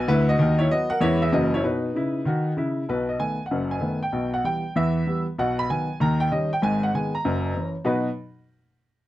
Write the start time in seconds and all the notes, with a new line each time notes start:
0.08 D2 D3 E4 B4
0.29 F#4 D#5
0.39 D#2 D#3
0.59 E4 C#5
0.71 F#3 B3 F#4 D#5
0.90 A#4 F#5
1.00 E2 E3 G#3 C#4 E4 C#5
1.22 G#4 E5
1.32 F#1 F#2 E3 F#3 A#3 F#4 D#5
1.54 E4 C#5
1.64 B2 D#4 B4
1.95 C#3 E4
2.25 D#3 F#4
2.57 C#3 E4
2.89 B1 B2 B4
3.09 D#5
3.19 D#3 A3 B3 G#5
3.46 F#5
3.51 F#1 F#2
3.71 G#5
3.81 D#3 A3 B3
4.03 G5
4.12 B1 B2
4.34 F#5
4.44 E3 G3 B3 G5
4.76 E2 E3 E5
5.07 E3 G3 B3
5.38 B1 B2 F#5
5.59 B5
5.70 D#3 F#3 B3 G#5
6.00 D#2 D#3 A#5
6.20 G5
6.31 D#3 G3 C#4 D#5
6.53 G5
6.62 G#1 G#2 G#5
6.83 F#5
6.94 D#3 G#3 B3 G#5
7.15 A#5
7.25 F#1 F#2
7.57 E3 C#4
7.85 B2 F#3 D#4 F#4 B4 D#5 B5